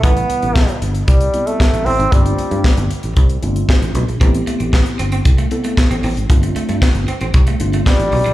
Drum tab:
HH |xxxx-xxxxxxx-xox|xxxx-xxxxxxx-xxx|xxxx-xxxxxxx-xox|xxxx-xxxxxxx-xox|
CP |----x-------x---|----x-------x---|----x-------x---|----x-------x---|
SD |----o-------o---|----o-------o---|----o-------o---|----o-------o---|
BD |o---o---o---o---|o---o---o---o---|o---o---o---o---|o---o---o---o---|